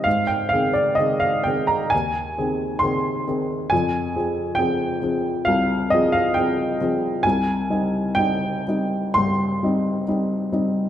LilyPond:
\new Staff \with { instrumentName = "Upright piano" } { \time 4/4 \key c \minor \tempo 4 = 67 << { f''16 g''16 f''16 d''16 ees''16 f''16 g''16 bes''16 aes''4 c'''4 | aes''4 g''4 f''8 ees''16 f''16 g''4 | aes''4 g''4 c'''4 r4 | } \\ { aes,8 <ees c' aes'>8 <ees c' aes'>8 <ees c' aes'>8 ees,8 <ees c' aes'>8 <ees c' aes'>8 <ees c' aes'>8 | f,8 <f c' aes'>8 <f c' aes'>8 <f c' aes'>8 c,8 <f c' aes'>8 <f c' aes'>8 <f c' aes'>8 | c,8 <g c' ees'>8 <g c' ees'>8 <g c' ees'>8 g,8 <g c' ees'>8 <g c' ees'>8 <g c' ees'>8 | } >> }